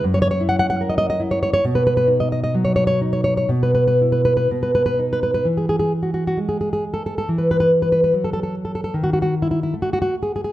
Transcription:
\new Staff \with { instrumentName = "Nylon-string guitar" } { \time 2/4 \key e \major \tempo 4 = 68 << { r32 cis''32 cis''32 cis''32 r32 fis''32 fis''32 fis''32 r32 dis''32 dis''32 dis''32 r32 cis''32 cis''32 cis''32 | r32 b'32 b'32 b'32 r32 dis''32 dis''32 dis''32 r32 cis''32 cis''32 cis''32 r32 cis''32 cis''32 cis''32 | r32 b'32 b'32 b'32 r32 b'32 b'32 b'32 r32 b'32 b'32 b'32 r32 b'32 b'32 b'32 | r32 gis'32 gis'32 gis'32 r32 fis'32 fis'32 fis'32 r32 gis'32 gis'32 gis'32 r32 a'32 a'32 a'32 |
r32 b'32 b'32 b'32 r32 b'32 b'32 b'32 r32 a'32 a'32 a'32 r32 a'32 a'32 a'32 | r32 fis'32 fis'32 fis'32 r32 e'32 e'32 e'32 r32 fis'32 fis'32 fis'32 r32 gis'32 gis'32 gis'32 | } \\ { fis,8 e'8 ais'8 e'8 | b,8 dis'8 fis8 dis'8 | b,8 e'8 b,8 dis'8 | e4 gis4 |
e4 fis4 | dis4 a4 | } >> }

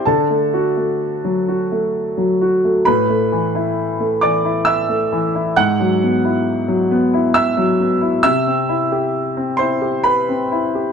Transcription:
<<
  \new Staff \with { instrumentName = "Grand piano" } { \time 3/4 \key d \lydian \tempo 4 = 66 <a' a''>2 r4 | <b' b''>4. <d'' d'''>8 <e'' e'''>4 | <fis'' fis'''>2 <e'' e'''>4 | <e'' e'''>4. <c'' c'''>8 <b' b''>4 | }
  \new Staff \with { instrumentName = "Grand piano" } { \time 3/4 \key d \lydian d16 a16 fis'16 a8 fis16 fis'16 a8 fis16 fis'16 a16 | a,16 a16 e16 e'8 a16 e16 e'8 a16 e16 e'16 | gis,16 fis16 b16 e'8 fis16 b16 e'8 fis16 b16 e'16 | c16 c'16 e'16 g'8 c'16 e'16 g'8 c'16 e'16 g'16 | }
>>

